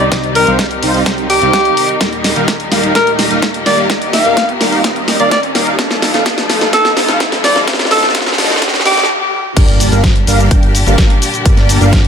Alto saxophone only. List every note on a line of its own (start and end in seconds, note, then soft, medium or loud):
0.35 0.51 A#4 medium
1.30 1.96 G4 medium
2.95 3.11 A#4 medium
3.66 3.82 D5 medium
4.13 4.49 F5 medium
5.20 5.27 D5 medium
5.31 5.39 D5 medium
6.73 6.89 A4 medium
7.44 7.60 D5 medium
7.91 8.07 A4 medium
8.86 9.09 G4 loud